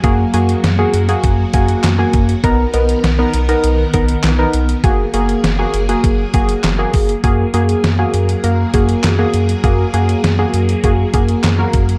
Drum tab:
HH |x-xxx-xxx-xxx-xx|x-xxx-xxx-xxx-xx|x-xxx-xxx-xxx-ox|x-xxx-xxx-xxx-xx|
CP |------------x---|------------x---|------------x---|------------x---|
SD |----o-------o---|----o-------o---|----o-------o---|----o-------o---|
BD |o-------o-o---o-|o---------o-----|o-------o-o---o-|o---------o-----|

HH |x-xxx-xxx-xxx-xx|
CP |------------x---|
SD |----o-------o---|
BD |o-------o-o---o-|